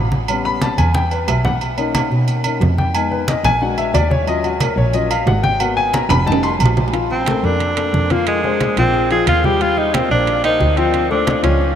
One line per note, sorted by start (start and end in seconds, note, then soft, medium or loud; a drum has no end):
0.00 0.73 A1 loud
0.12 high conga medium
0.28 0.76 G3 soft
0.28 0.76 B3 soft
0.28 0.77 C#4 medium
0.28 high conga soft
0.28 low agogo loud
0.45 0.61 B5 loud
0.45 high conga soft
0.62 0.78 A5 medium
0.62 high conga loud
0.62 low timbale medium
0.62 low agogo medium
0.78 1.25 E2 loud
0.78 0.94 G#5 medium
0.78 high conga medium
0.78 low agogo medium
0.94 1.11 G5 medium
0.94 high conga medium
1.11 1.28 B4 medium
1.11 low agogo medium
1.28 2.05 B1 medium
1.28 1.44 E5 medium
1.28 low timbale medium
1.28 low agogo loud
1.45 1.76 F#5 medium
1.45 low conga medium
1.61 high conga soft
1.61 low agogo medium
1.77 2.43 A#3 medium
1.77 2.43 C#4 medium
1.77 2.44 D#4 medium
1.77 high conga soft
1.77 low agogo medium
1.95 high conga loud
1.95 low timbale medium
1.95 low agogo loud
2.11 2.57 B2 loud
2.11 high conga soft
2.28 high conga soft
2.28 low agogo medium
2.44 2.60 A#3 soft
2.44 2.60 C#4 soft
2.44 2.60 D#4 medium
2.44 high conga soft
2.44 low agogo loud
2.61 3.39 F2 loud
2.61 high conga medium
2.61 low timbale medium
2.78 2.94 G5 medium
2.78 high conga medium
2.94 3.17 G#3 medium
2.94 3.17 B3 soft
2.94 3.17 D#4 medium
2.94 3.11 G#5 medium
2.94 high conga soft
2.94 low agogo loud
3.11 3.27 B4 medium
3.11 high conga soft
3.28 3.44 D#5 medium
3.28 high conga loud
3.28 low timbale medium
3.28 low agogo medium
3.44 3.90 A#1 medium
3.44 3.61 G#5 loud
3.44 high conga soft
3.44 low conga medium
3.44 low agogo medium
3.61 4.09 G#3 medium
3.61 4.09 D4 soft
3.61 4.09 F#4 medium
3.61 3.78 F#5 medium
3.61 high conga soft
3.78 3.94 E5 loud
3.78 high conga soft
3.78 low agogo medium
3.94 4.72 D#2 loud
3.94 4.10 D5 medium
3.94 high conga medium
3.94 low timbale medium
3.94 low agogo loud
4.11 4.27 C#5 loud
4.11 high conga medium
4.27 4.49 F#3 medium
4.27 4.50 C#4 soft
4.27 4.50 F4 medium
4.27 4.44 D#5 loud
4.27 high conga soft
4.27 low agogo medium
4.44 4.61 F#4 medium
4.44 high conga soft
4.44 low agogo medium
4.60 4.77 A#4 medium
4.60 high conga loud
4.60 low timbale medium
4.60 low agogo loud
4.76 5.23 A#1 loud
4.76 4.94 C#5 medium
4.76 high conga soft
4.93 5.09 F#3 medium
4.93 5.09 C#4 soft
4.93 5.09 F4 medium
4.93 5.10 D#5 medium
4.93 high conga soft
4.93 low agogo medium
5.11 5.27 F5 medium
5.11 high conga soft
5.11 low agogo loud
5.27 6.04 G#1 loud
5.27 5.44 F#5 medium
5.27 high conga medium
5.27 low timbale medium
5.43 5.60 G5 loud
5.43 high conga medium
5.60 6.08 A#3 medium
5.60 6.08 B3 medium
5.60 6.08 F#4 medium
5.60 5.77 F#5 medium
5.60 high conga soft
5.60 low agogo loud
5.77 5.93 G#5 loud
5.77 high conga soft
5.93 6.10 A#5 medium
5.93 high conga loud
5.93 low timbale medium
5.93 low agogo medium
6.09 6.56 F1 loud
6.09 6.26 B5 loud
6.09 high conga soft
6.09 low conga medium
6.09 high timbale medium
6.09 low agogo medium
6.26 6.49 G3 medium
6.26 6.49 A3 medium
6.26 6.49 D#4 medium
6.26 6.43 A5 loud
6.26 high conga soft
6.26 low conga medium
6.32 high timbale loud
6.43 6.53 C6 loud
6.43 high conga soft
6.43 low agogo medium
6.59 7.37 A#1 loud
6.59 high conga medium
6.59 low agogo loud
6.66 low timbale medium
6.77 high conga medium
6.77 low timbale medium
6.88 low timbale medium
6.93 7.21 F3 medium
6.93 7.21 F4 medium
6.93 7.21 F5 medium
6.93 high conga soft
6.93 high timbale medium
7.11 7.46 C4 medium
7.11 high conga soft
7.26 7.41 A3 medium
7.26 7.41 A4 medium
7.26 7.41 A#4 medium
7.26 high conga loud
7.26 high timbale medium
7.43 7.90 F2 medium
7.43 7.71 A#3 medium
7.43 8.13 D4 medium
7.43 7.71 A4 medium
7.43 7.72 A#4 medium
7.43 high conga soft
7.60 high conga soft
7.60 high timbale medium
7.77 8.04 A#3 medium
7.77 8.04 A4 medium
7.77 8.05 A#4 medium
7.77 high conga soft
7.77 high timbale medium
7.93 8.71 F2 medium
7.93 high conga medium
8.10 8.38 F3 medium
8.10 8.27 A#3 medium
8.10 8.38 F4 medium
8.10 8.39 F5 medium
8.10 high conga medium
8.10 high timbale medium
8.27 8.74 G#3 medium
8.27 high conga soft
8.27 high timbale medium
8.44 8.58 G#3 medium
8.44 8.58 G#4 medium
8.44 8.58 C5 medium
8.44 high conga soft
8.61 8.74 G#3 medium
8.61 8.75 G#4 medium
8.61 8.75 C5 medium
8.61 high conga medium
8.61 high timbale medium
8.77 9.23 A#1 medium
8.77 9.05 F3 medium
8.77 9.09 C4 medium
8.77 9.05 F4 medium
8.77 9.05 F5 medium
8.77 high conga soft
8.77 high timbale medium
8.94 high conga soft
9.11 9.38 F3 medium
9.11 9.38 F4 medium
9.11 9.26 G#4 medium
9.11 9.38 F5 medium
9.11 high conga soft
9.11 high timbale medium
9.27 10.05 D#2 medium
9.27 9.47 F4 medium
9.27 high conga medium
9.27 high timbale loud
9.44 9.58 G3 medium
9.44 9.58 G4 medium
9.44 9.63 G4 medium
9.44 9.58 G5 medium
9.44 high conga medium
9.61 9.88 G3 medium
9.61 9.80 F4 loud
9.61 9.88 G4 medium
9.61 9.88 G5 medium
9.61 high conga soft
9.61 high timbale medium
9.77 9.96 D#4 medium
9.77 high conga soft
9.94 10.08 A#3 medium
9.94 10.11 C4 medium
9.94 10.08 A#4 medium
9.94 10.08 C5 medium
9.94 high conga medium
9.94 high timbale medium
10.10 10.57 A#1 medium
10.10 10.38 A#3 medium
10.10 10.42 D4 medium
10.10 10.39 A#4 medium
10.10 10.39 C5 medium
10.10 high conga soft
10.27 high conga soft
10.27 high timbale medium
10.44 10.71 A#3 medium
10.44 10.79 D#4 loud
10.44 10.72 A#4 medium
10.44 10.72 C5 medium
10.44 high conga soft
10.44 high timbale medium
10.60 11.38 D2 medium
10.60 high conga medium
10.60 low timbale medium
10.77 11.05 F3 medium
10.77 11.11 C4 medium
10.77 11.05 F4 medium
10.77 11.05 F5 medium
10.77 high timbale medium
10.94 high conga soft
10.94 high timbale medium
11.10 11.24 A3 medium
11.10 11.42 D4 medium
11.10 11.24 A4 medium
11.10 11.24 C5 medium
11.10 high conga soft
11.26 11.40 A3 medium
11.26 11.41 A4 medium
11.26 11.41 C5 medium
11.26 high conga loud
11.26 high timbale medium
11.43 11.75 C#2 medium
11.43 11.71 F3 medium
11.43 11.75 C#4 medium
11.43 11.71 F4 medium
11.43 11.71 F5 medium
11.43 high conga soft
11.43 high timbale medium
11.61 high conga soft